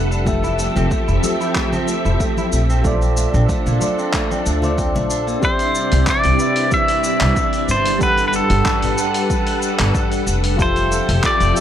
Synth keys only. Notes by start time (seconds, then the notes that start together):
Already playing: G3 G4 A4 B4 F#5
0.24 F3 G4 A4
0.29 E5
1.21 F3 G4 A4
1.26 E5
2.83 F4 A4 C5 D5
3.80 F4 A4 C5 D5
4.61 F4 A4 C5 D5
5.40 C4 G4 C5 D5
5.44 E5
6.37 C4 G4 B4 D5
6.42 E5
7.99 G3 G4 A4 B4
8.03 F#5
8.96 G3 G4 A4 B4
9.00 F#5
10.56 F3 F4 G4 A4
10.61 E5
11.53 F3 F4 G4 A4